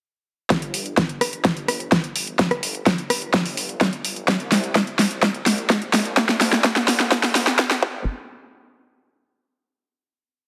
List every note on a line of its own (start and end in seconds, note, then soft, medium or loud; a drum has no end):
0.50 4.26 G1 medium
0.50 kick loud
0.50 snare soft
0.50 closed hi-hat medium
0.62 closed hi-hat soft
0.74 open hi-hat loud
0.86 closed hi-hat soft
0.97 kick loud
0.97 snare soft
0.97 closed hi-hat medium
1.09 closed hi-hat soft
1.21 cross-stick medium
1.21 open hi-hat loud
1.33 closed hi-hat soft
1.45 kick loud
1.45 snare medium
1.45 closed hi-hat medium
1.57 closed hi-hat soft
1.68 cross-stick medium
1.68 open hi-hat loud
1.80 closed hi-hat soft
1.92 kick loud
1.92 snare medium
1.92 closed hi-hat medium
2.04 closed hi-hat soft
2.16 open hi-hat loud
2.27 closed hi-hat soft
2.39 kick loud
2.39 snare medium
2.39 closed hi-hat medium
2.51 cross-stick medium
2.51 closed hi-hat soft
2.63 open hi-hat loud
2.75 closed hi-hat soft
2.86 kick loud
2.86 snare medium
2.86 closed hi-hat medium
2.98 closed hi-hat soft
3.10 cross-stick medium
3.10 open hi-hat loud
3.22 closed hi-hat soft
3.34 kick loud
3.34 snare medium
3.34 closed hi-hat medium
3.46 open hi-hat medium
3.57 open hi-hat loud
3.69 closed hi-hat soft
3.81 kick loud
3.81 snare medium
3.81 closed hi-hat medium
3.93 closed hi-hat soft
4.05 open hi-hat loud
4.16 closed hi-hat soft
4.28 6.15 C2 medium
4.28 kick loud
4.28 snare medium
4.28 closed hi-hat medium
4.40 closed hi-hat soft
4.52 snare medium
4.52 open hi-hat loud
4.64 closed hi-hat soft
4.75 kick loud
4.75 snare medium
4.75 closed hi-hat medium
4.87 closed hi-hat soft
4.99 snare medium
4.99 open hi-hat loud
5.11 closed hi-hat soft
5.23 kick loud
5.23 snare medium
5.23 closed hi-hat medium
5.35 closed hi-hat soft
5.46 snare medium
5.46 open hi-hat loud
5.58 closed hi-hat soft
5.70 kick loud
5.70 snare medium
5.70 closed hi-hat medium
5.82 closed hi-hat soft
5.93 snare medium
5.93 open hi-hat loud
6.05 closed hi-hat soft
6.17 7.82 D2 medium
6.17 kick loud
6.17 snare medium
6.17 closed hi-hat medium
6.29 snare medium
6.29 closed hi-hat soft
6.41 snare medium
6.41 open hi-hat loud
6.53 snare medium
6.53 closed hi-hat soft
6.64 kick loud
6.64 snare loud
6.64 closed hi-hat medium
6.76 snare medium
6.76 closed hi-hat soft
6.88 snare loud
6.88 open hi-hat loud
7.00 snare medium
7.00 closed hi-hat soft
7.12 kick loud
7.12 snare loud
7.12 closed hi-hat medium
7.23 snare medium
7.23 open hi-hat medium
7.35 snare loud
7.35 open hi-hat loud
7.47 snare medium
7.47 closed hi-hat soft
7.59 kick loud
7.59 snare loud
7.59 closed hi-hat medium
7.71 snare loud
7.71 closed hi-hat soft
7.83 8.04 G1 medium
7.83 kick loud